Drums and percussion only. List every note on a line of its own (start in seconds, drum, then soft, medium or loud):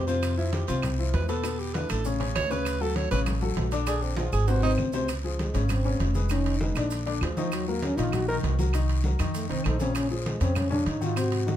0.07 high conga soft
0.07 short guiro medium
0.07 maracas medium
0.22 high conga soft
0.22 high timbale medium
0.22 long guiro medium
0.22 claves medium
0.22 maracas medium
0.38 high conga soft
0.38 maracas soft
0.52 high conga medium
0.52 high timbale medium
0.52 low timbale medium
0.52 short guiro medium
0.52 maracas soft
0.67 high timbale medium
0.67 short guiro medium
0.67 maracas medium
0.82 high conga soft
0.82 low conga medium
0.82 high timbale medium
0.82 long guiro medium
0.82 claves medium
0.82 maracas medium
0.98 high conga soft
0.98 maracas soft
1.13 high conga medium
1.13 high timbale medium
1.13 low timbale medium
1.13 short guiro medium
1.13 maracas soft
1.29 high timbale medium
1.29 short guiro medium
1.29 maracas medium
1.44 high conga soft
1.44 high timbale medium
1.44 long guiro medium
1.44 claves medium
1.44 maracas loud
1.59 high conga soft
1.59 maracas soft
1.74 high conga loud
1.74 high timbale medium
1.74 low timbale medium
1.74 short guiro medium
1.74 maracas soft
1.89 high timbale medium
1.89 short guiro medium
1.89 claves medium
1.89 maracas medium
2.05 high conga soft
2.05 long guiro medium
2.05 maracas medium
2.21 high conga soft
2.21 high timbale medium
2.21 maracas soft
2.35 high conga medium
2.35 high timbale loud
2.35 low timbale medium
2.35 short guiro medium
2.35 claves medium
2.35 maracas soft
2.51 high conga soft
2.51 short guiro medium
2.51 maracas medium
2.65 high conga soft
2.65 high timbale medium
2.65 long guiro medium
2.65 claves medium
2.65 maracas loud
2.81 high conga soft
2.81 maracas soft
2.96 high conga medium
2.96 high timbale medium
2.96 low timbale medium
2.96 short guiro medium
2.96 maracas soft
3.11 high timbale medium
3.11 short guiro medium
3.11 maracas medium
3.26 high conga soft
3.26 low conga medium
3.26 high timbale medium
3.26 long guiro medium
3.26 claves medium
3.26 maracas medium
3.41 high conga soft
3.41 low conga medium
3.41 maracas soft
3.56 high conga medium
3.56 high timbale medium
3.56 low timbale medium
3.56 short guiro medium
3.56 maracas soft
3.71 high conga soft
3.71 high timbale medium
3.71 short guiro medium
3.71 maracas medium
3.87 high conga soft
3.87 high timbale medium
3.87 long guiro medium
3.87 claves medium
3.87 maracas medium
4.02 high conga soft
4.02 maracas soft
4.17 high conga medium
4.17 high timbale medium
4.17 short guiro medium
4.17 maracas soft
4.32 short guiro medium
4.32 claves medium
4.32 maracas medium
4.48 high conga soft
4.48 high timbale medium
4.48 long guiro medium
4.48 maracas medium
4.63 high conga soft
4.63 low timbale medium
4.63 maracas soft
4.78 high conga medium
4.78 short guiro medium
4.78 claves medium
4.78 maracas soft
4.93 high conga soft
4.93 low timbale medium
4.93 short guiro medium
4.93 maracas medium
5.08 high conga soft
5.08 high timbale medium
5.08 long guiro medium
5.08 claves medium
5.08 maracas medium
5.24 high conga soft
5.24 maracas soft
5.39 high conga medium
5.39 high timbale medium
5.39 short guiro medium
5.39 maracas soft
5.54 high conga soft
5.54 high timbale medium
5.54 short guiro medium
5.54 maracas medium
5.69 high conga soft
5.69 low conga medium
5.69 high timbale medium
5.69 long guiro medium
5.69 claves medium
5.69 maracas medium
5.84 high conga soft
5.84 maracas soft
6.00 high conga medium
6.00 high timbale medium
6.00 low timbale medium
6.00 short guiro medium
6.00 maracas soft
6.15 high conga medium
6.15 short guiro medium
6.15 maracas medium
6.29 high conga soft
6.29 high timbale medium
6.29 long guiro medium
6.29 claves medium
6.29 maracas medium
6.45 high conga soft
6.45 high timbale medium
6.45 maracas soft
6.60 high conga medium
6.60 short guiro medium
6.60 maracas soft
6.75 high conga soft
6.75 high timbale medium
6.75 short guiro medium
6.75 claves medium
6.75 maracas medium
6.90 high conga soft
6.90 high timbale medium
6.90 long guiro medium
6.90 maracas medium
7.06 high conga soft
7.06 high timbale medium
7.06 maracas soft
7.21 high conga medium
7.21 high timbale loud
7.21 low timbale medium
7.21 short guiro medium
7.21 claves medium
7.21 maracas soft
7.37 high conga medium
7.37 short guiro medium
7.37 maracas medium
7.52 high conga soft
7.52 high timbale medium
7.52 long guiro medium
7.52 claves medium
7.52 maracas medium
7.67 high conga soft
7.67 maracas soft
7.82 high conga medium
7.82 high timbale medium
7.82 short guiro medium
7.82 maracas soft
7.97 high conga soft
7.97 high timbale medium
7.97 short guiro medium
7.97 maracas medium
8.12 high conga soft
8.12 low conga medium
8.12 high timbale medium
8.12 long guiro medium
8.12 claves medium
8.12 maracas medium
8.28 high conga soft
8.28 maracas soft
8.43 high conga medium
8.43 high timbale medium
8.43 low timbale medium
8.43 short guiro medium
8.43 maracas soft
8.59 high conga medium
8.59 short guiro medium
8.59 maracas medium
8.73 high conga soft
8.73 high timbale medium
8.73 long guiro medium
8.73 claves medium
8.73 maracas medium
8.89 high conga soft
8.89 high timbale medium
8.89 maracas soft
9.04 high conga medium
9.04 short guiro medium
9.04 maracas soft
9.19 high conga soft
9.19 high timbale medium
9.19 short guiro medium
9.19 claves medium
9.19 maracas medium
9.34 high conga soft
9.34 high timbale medium
9.34 long guiro medium
9.34 maracas medium
9.50 high conga soft
9.50 high timbale medium
9.50 maracas soft
9.64 high conga medium
9.64 high timbale medium
9.64 short guiro medium
9.64 claves medium
9.64 maracas soft
9.79 high conga medium
9.79 short guiro medium
9.79 maracas medium
9.95 high conga soft
9.95 high timbale loud
9.95 long guiro medium
9.95 claves medium
9.95 maracas medium
10.10 high conga soft
10.10 maracas soft
10.25 high conga loud
10.25 high timbale medium
10.25 short guiro medium
10.25 maracas soft
10.40 high timbale medium
10.40 short guiro medium
10.40 maracas medium
10.55 high conga soft
10.55 low conga medium
10.55 high timbale medium
10.55 long guiro medium
10.55 claves medium
10.55 maracas medium
10.71 high conga soft
10.71 low conga medium
10.71 maracas soft
10.86 high conga medium
10.86 high timbale medium
10.86 short guiro medium
10.86 maracas soft
11.02 high conga medium
11.02 short guiro medium
11.02 maracas medium
11.16 high conga soft
11.16 high timbale medium
11.16 long guiro medium
11.16 claves medium
11.16 maracas medium
11.32 high conga soft
11.32 high timbale medium
11.32 maracas soft
11.47 high conga medium
11.47 short guiro medium
11.47 maracas soft